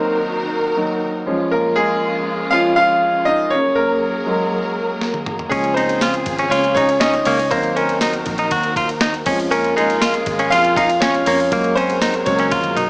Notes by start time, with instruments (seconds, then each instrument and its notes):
Already playing: string section D#3 D#4 F#4 A#4, grand piano F#3 A#3 C4 D#4 A#4 C5
0.77 grand piano F#3 A#3 D#4
1.26 string section F2 G#3 C#4 F4, grand piano F3 G#3 C#4
1.51 grand piano A#3 A#4
1.76 grand piano G#3 G#4
2.51 grand piano F3 G#3 C#4 F4 F5
2.76 grand piano F4 F5
3.25 grand piano D#4 D#5
3.50 string section F#3 A#3 G#4 A#4, grand piano C#4 C#5
3.75 grand piano A#3 A#4
4.26 grand piano F#3 G#3 A#3
5.01 snare
5.14 high tom
5.26 mid tom
5.39 floor tom
5.49 picked electric bass C#2, string section C#3 F4 G#4, grand piano F3 G#3 C#4 G#4, clean electric guitar C#4, kick, ride
5.64 ride
5.74 grand piano C4 C5, clean electric guitar D#4, ride
5.89 ride
6.01 clean electric guitar F4, snare, ride
6.14 ride
6.26 picked electric bass G#1, kick, ride
6.38 clean electric guitar C#4, ride
6.50 picked electric bass C#2, grand piano C#4 C#5, clean electric guitar F4, ride
6.64 ride
6.75 grand piano C#4 C#5, clean electric guitar D#4, kick, ride
6.89 ride
7.00 clean electric guitar C#4, grand piano D#4 D#5, snare, ride
7.14 ride
7.25 picked electric bass C#2, clean electric guitar A#3, grand piano C#4 C#5, open hi-hat, ride
7.39 ride
7.51 picked electric bass D#2, string section D#3 D#4 F#4 A#4, grand piano F#3 A#3 C4 D#4 C5, clean electric guitar A#3, kick, ride
7.63 ride
7.75 grand piano A#3 A#4, clean electric guitar C#4, ride
7.89 ride
8.01 clean electric guitar D#4, snare, ride
8.13 ride
8.26 picked electric bass A#1, kick, ride
8.38 clean electric guitar D#4, ride
8.51 picked electric bass D#2, clean electric guitar F#4, kick, ride
8.63 ride
8.76 clean electric guitar F4, kick, ride
8.89 ride
9.01 clean electric guitar D#4, snare, ride
9.14 ride
9.26 picked electric bass F2, grand piano F3 G#3 C#4, string section G#3 C#4 F4, clean electric guitar C#4, kick, open hi-hat, ride
9.40 ride
9.51 grand piano A#3 A#4, clean electric guitar C#4, ride
9.64 ride
9.76 grand piano G#3 G#4, clean electric guitar D#4, ride
9.90 ride
10.02 clean electric guitar F4, snare, ride
10.14 ride
10.26 picked electric bass G#1, kick, ride
10.39 clean electric guitar C#4, ride
10.50 picked electric bass F2, clean electric guitar F4, grand piano F4 F5, ride
10.64 ride
10.76 clean electric guitar D#4, grand piano F4 F5, kick, ride
10.90 ride
11.00 clean electric guitar C#4, grand piano C#4 C#5, snare, ride
11.14 ride
11.26 picked electric bass F2, clean electric guitar A#3, grand piano C#4 C#5, open hi-hat, ride
11.40 ride
11.51 picked electric bass F#2, grand piano F#3 G#3 A#3, string section F#3 F#4 G#4 A#4, clean electric guitar A#3, kick, ride
11.64 ride
11.75 grand piano C4 C5, clean electric guitar C#4, ride
11.90 ride
12.02 clean electric guitar D#4, snare, ride
12.14 ride
12.26 picked electric bass C#2, grand piano F#3 G#3 A#3 C#4 C#5, kick, ride
12.39 clean electric guitar C#4, ride
12.51 picked electric bass F#2, clean electric guitar F4, kick, high tom, ride
12.64 high tom, ride
12.76 clean electric guitar D#4, mid tom, ride